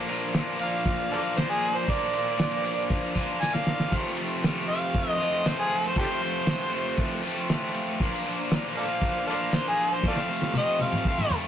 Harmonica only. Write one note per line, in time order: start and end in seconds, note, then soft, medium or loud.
0.61 1.10 F5 loud
1.12 1.20 A4 medium
1.12 1.20 D5 medium
1.12 1.40 F5 medium
1.39 1.50 C5 medium
1.50 1.77 G#4 medium
1.76 1.91 C5 medium
1.89 2.88 D5 loud
3.41 3.53 G#5 loud
3.53 3.91 F5 loud
4.69 5.10 F5 loud
5.10 5.21 D#5 loud
5.21 5.49 D#5 medium
5.47 5.58 C5 loud
5.59 5.83 G#4 medium
5.87 5.97 C5 loud
5.99 6.07 G4 medium
5.99 6.06 A4 medium
5.99 6.96 C5 loud
8.78 8.84 A4 medium
8.78 8.84 D5 medium
8.78 9.27 F5 loud
9.28 9.34 A4 medium
9.28 9.36 D5 medium
9.28 9.57 F5 medium
9.55 9.66 C5 medium
9.68 9.95 G#4 loud
9.94 10.05 C5 loud
10.08 10.16 A4 medium
10.08 10.16 D5 medium
10.08 10.56 F5 loud
10.58 10.80 D#5 medium
10.81 11.05 F5 medium
11.09 11.32 F5 loud